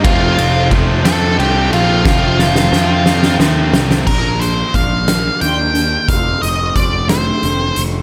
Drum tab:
CC |------------|------------|x-----------|------------|
RD |x-x-x-x-x-x-|------------|------------|------------|
HH |------------|------------|--x-x-x-x-x-|x-x-x-x-x-x-|
SD |------o-----|o-ooo-ooo-oo|------o-----|------o-----|
BD |o---o-------|o-----------|o---o-------|o---o-------|